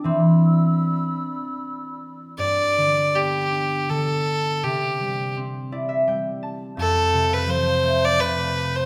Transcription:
<<
  \new Staff \with { instrumentName = "Flute section" } { \time 3/4 \key g \mixolydian \tempo 4 = 82 <d'' b'' e'''>2. | r2. | r2. | <f'' a'' g'''>2. | }
  \new Staff \with { instrumentName = "Fiddle" } { \time 3/4 \key g \mixolydian r2. | d''4 g'4 a'4 | g'4 r2 | a'8. b'16 c''8. d''16 b'8. c''16 | }
  \new Staff \with { instrumentName = "Harp" } { \time 3/4 \key g \mixolydian <e c'>2 r4 | r2. | r4. d''16 e''16 g''8 a''8 | r2. | }
  \new Staff \with { instrumentName = "Harp" } { \clef bass \time 3/4 \key g \mixolydian r2. | g,8 d8 b8 d'8 d4 | c8 g8 c'8 e'8 g4 | f,8 c8 f8 a8 c4 | }
>>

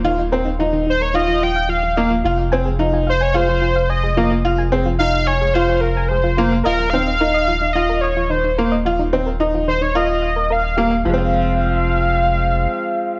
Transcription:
<<
  \new Staff \with { instrumentName = "Soft synth lead" } { \time 4/4 \key f \minor \tempo 4 = 109 r4. c''16 des''16 ees''8 g''8 f''8. r16 | r4. c''16 des''16 c''4 ees''8. r16 | r4 f''8 des''8 c''8 bes'8 c''8. r16 | bes'8 f''4. ees''8 des''8 c''8. r16 |
r4. c''16 des''16 ees''4 f''8. r16 | f''1 | }
  \new Staff \with { instrumentName = "Synth arpeggio sound" } { \time 4/4 \key f \minor ees'16 ees'16 bes'16 ees'16 f'16 ees'16 ees'16 bes'16 ees'16 f'16 f'16 f''16 f'16 f'16 ees''16 f'16 | f'16 f''16 aes''16 aes'16 f'16 f'16 f''16 aes''16 aes'16 f'16 f'16 f''16 aes''16 aes'16 f'16 f'16 | f''16 aes''16 aes'16 f'16 f'16 f''16 aes''16 aes'16 f'16 f'16 f''16 aes''16 aes'16 f'16 f'16 f''16 | ees''16 f'16 ees'16 ees'16 bes'16 ees''16 f'16 ees'16 ees'16 bes'16 ees''16 f'16 ees'16 ees'16 bes'16 ees''16 |
f'16 ees'16 ees'16 bes'16 ees''16 f'16 ees'16 ees'16 bes'16 ees''16 f''16 bes'16 bes'16 f''16 g'16 f''16 | f'8 r2. r8 | }
  \new Staff \with { instrumentName = "Upright piano" } { \time 4/4 \key f \minor f'8 c'8 ees'4 f'4 r8 bes8 | f'8 c'8 ees'4 f'4 r8 bes8 | f'8 c'8 ees'4 f'4 r8 bes8 | f'8 c'8 ees'4 f'4 r8 bes8 |
f'8 c'8 ees'4 f'4 r8 bes8 | <f aes c' f'>1 | }
  \new Staff \with { instrumentName = "Sub bass" } { \clef bass \time 4/4 \key f \minor ees,,1 | f,,1~ | f,,1 | ees,,1~ |
ees,,1 | f,,2. r4 | }
>>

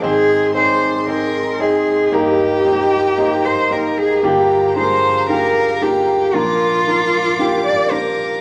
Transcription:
<<
  \new Staff \with { instrumentName = "String section" } { \time 4/4 \key aes \lydian \tempo 4 = 114 << { <ees' c'''>1 | <ees'' bes''>1 | <f'' bes''>1 | <f'' d'''>1 | } \\ { aes'1 | g'1~ | g'1 | bes'1 | } >> }
  \new Staff \with { instrumentName = "Cello" } { \time 4/4 \key aes \lydian aes'4 c''4 bes'4 aes'4 | g'2~ g'8 c''8 bes'8 aes'8 | g'4 c''4 bes'4 g'4 | f'2~ f'8 d''8 bes'4 | }
  \new Staff \with { instrumentName = "Grand piano" } { \time 4/4 \key aes \lydian <c' ees' aes' c''>4 <c' ees' aes' des'' d''>4 <c' ees' aes' c''>4 <c' ees' aes' ees''>4 | <bes ees' g' bes'>4 <bes ees' f' g' c''>4 <bes ees' g' c''>4 <bes ees' g' bes'>4 | <bes d' f' g'>4 <bes d' f' aes' bes'>4 <bes d' f' g'>4 <bes d' f' g'>4 | <bes d' f' bes'>4 <bes d' f' bes'>4 <bes d' f' g'>4 <bes d' f' c''>4 | }
  \new Staff \with { instrumentName = "Grand piano" } { \clef bass \time 4/4 \key aes \lydian <aes, ees>4. r2 r8 | <g, g>4. r2 r8 | <g, d>4. r2 r8 | <bes, f>4. r2 r8 | }
>>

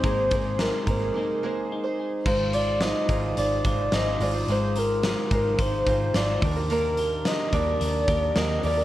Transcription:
<<
  \new Staff \with { instrumentName = "Glockenspiel" } { \time 4/4 \key aes \lydian \tempo 4 = 108 c'''4 bes''8 bes''2 r8 | c'''8 d'''8 ees'''4 d'''8 d'''8 ees'''8 d'''8 | c'''8 bes''4 bes''8 c'''4 d'''8. r16 | bes''4 ees'''8 d'''4. ees'''8 d'''8 | }
  \new Staff \with { instrumentName = "Soft synth lead" } { \time 4/4 \key aes \lydian c''4 bes'8 bes'2 r8 | c''8 d''8 ees''4 d''8 d''8 ees''8 d''8 | c''8 bes'4 bes'8 c''4 d''8. r16 | bes'4 ees''8 d''4. ees''8 d''8 | }
  \new Staff \with { instrumentName = "Clean electric guitar" } { \time 4/4 \key aes \lydian aes8 aes'8 ees'8 aes'8 ees'8 aes'8 ees'8 aes'8 | aes8 f'8 ees'8 c''8 ees'8 f'8 c''8 f'8 | aes8 f'8 ees'8 c''8 ees'8 f'8 c''8 ees8 | ees8 g'8 d'8 bes'8 d'8 g'8 bes'8 g'8 | }
  \new Staff \with { instrumentName = "Twelve-string acoustic guitar" } { \time 4/4 \key aes \lydian <aes bes ees' aes' c''>8 <bes ees' aes' c''>4 <bes ees' aes' c''>8 <bes ees' aes' c''>8 <aes bes ees' aes' c''>8. <ees' aes' c''>8. | <aes ees' f' c''>4. <aes ees' f' c''>4 <aes ees' f' c''>8 <aes ees' f' c''>8 <aes ees' f' c''>16 <ees' f' c''>16 | <aes ees' f' c''>4. <aes ees' f' c''>4 <aes ees' f' c''>8 <aes ees' f' c''>8 <bes d' g' bes'>16 <d' g' bes'>16 | <ees bes d' g' bes'>4. <bes d' g' bes'>4 <bes d' g' bes'>8 <bes d' g' bes'>8 <bes d' g' bes'>16 <d' g' bes'>16 | }
  \new Staff \with { instrumentName = "Picked electric bass" } { \clef bass \time 4/4 \key aes \lydian aes,,4~ aes,,16 r16 aes,,8 r2 | aes,,4~ aes,,16 r16 aes,,8 aes,,8 aes,,8 aes,,8 aes,,8 | aes,,4~ aes,,16 r16 aes,,8 aes,,8 aes,,8 aes,,8 ees,8~ | ees,4~ ees,16 r16 ees,8 ees,8 ees,8 ees,8 ees,8 | }
  \new DrumStaff \with { instrumentName = "Drums" } \drummode { \time 4/4 <hh bd>8 <hh bd>8 <hh sn>8 <hh bd>8 r4 r4 | <cymc bd>8 hh8 <hh sn>8 <hh bd>8 hh8 <hh bd>8 <hh sn>8 hho8 | hh8 hh8 <hh sn>8 <hh bd>8 <hh bd>8 <hh bd>8 <hh sn>8 <hho bd>8 | hh8 hh8 <hh sn>8 <hh bd>8 hh8 <hh bd>8 <hh sn>8 hho8 | }
>>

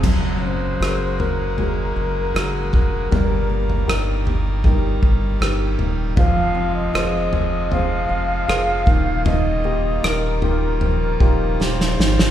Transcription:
<<
  \new Staff \with { instrumentName = "Flugelhorn" } { \time 4/4 \key ees \mixolydian \tempo 4 = 78 r8 c''4 bes'2 bes'8~ | bes'4. r2 r8 | f''8. ees''4~ ees''16 f''2 | ees''4 bes'2 c''4 | }
  \new Staff \with { instrumentName = "Grand piano" } { \time 4/4 \key ees \mixolydian ges4 <ges' aes' bes'>4 <ges' aes' bes'>4 <ges' aes' bes'>4 | g4 <ees' g' bes'>4 <ees' g' bes'>4 <ees' g' bes'>4 | f4 <f' aes' c''>4 <f' aes' c''>4 <f' aes' c''>8 ees8~ | ees8 <ees' f' g'>4 <ees' f' g'>4 <ees' f' g'>4 ees8 | }
  \new Staff \with { instrumentName = "Nylon-string guitar" } { \time 4/4 \key ees \mixolydian ges8 des'8 ges'8 bes'8 aes8 ges'8 bes'8 ges'8 | g,8 bes8 ees'8 g'8 g8 ees'8 g'8 ees'8 | f8 c'8 f'8 aes'8 c'8 f'8 aes'8 ees8 | ees8 bes8 ees'8 g'8 f8 ees'8 g'8 ees'8 | }
  \new Staff \with { instrumentName = "Pipe organ" } { \time 4/4 \key ees \mixolydian ges'1 | g'1 | f'1~ | f'1 | }
  \new Staff \with { instrumentName = "Pipe organ" } { \clef bass \time 4/4 \key ees \mixolydian << { bes1~ | bes1 | aes2.~ aes8 bes8~ | bes1 | } \\ { <des aes>1 | <ees g>1 | <c f>2.~ <c f>8 <ees g>8~ | <ees g>1 | } >> }
  \new Staff \with { instrumentName = "Sub bass" } { \clef bass \time 4/4 \key ees \mixolydian ges,,4 ges,,4. ges,,8 ges,,8 f,,8 | g,,4 g,,4. g,,8 g,,8 ees,,8 | f,,4 f,,4. f,,8 f,,8 ees,,8~ | ees,,4 ees,,4. ees,,8 ees,,8 aes,,8 | }
  \new DrumStaff \with { instrumentName = "Drums" } \drummode { \time 4/4 <cymc bd tomfh>4 ss8 tomfh8 tomfh4 ss8 <bd tomfh>8 | tomfh8. tomfh16 ss8 tomfh8 <bd tomfh>8 bd8 ss8 tomfh8 | <bd tomfh>4 ss8 tomfh8 tomfh4 ss8 <bd tomfh>8 | tomfh4 ss8 tomfh8 tomfh8 bd8 sn16 sn16 sn16 sn16 | }
>>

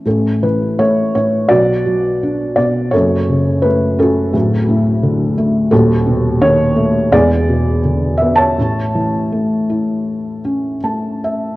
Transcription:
<<
  \new Staff \with { instrumentName = "Felt piano" } { \time 4/4 \key a \major \tempo 4 = 84 << { a'8 b'8 cis''8 cis''8 d''4. d''8 | cis''4 b'8 a'2 r8 | a'4 cis''4 d''4 r8 e''16 a''16~ | a''2. a''8 e''8 | } \\ { cis'2 fis'2 | a'4. fis'2 r8 | fis'2 gis'4.~ gis'16 cis''16~ | cis''2. r4 | } >> }
  \new Staff \with { instrumentName = "Felt piano" } { \clef bass \time 4/4 \key a \major <a,, a,>8 e8 a8 a,8 <b,, b,>8 fis8 d'8 b,8 | <fis,, fis,>8 cis8 a8 cis'8 <d,, d,>8 a,8 d8 a8 | <dis,, dis,>8 b,8 dis8 a8 <e,, e,>8 b,8 d8 b8 | <a,, a,>8 e8 a8 e'4 cis'8 a4 | }
>>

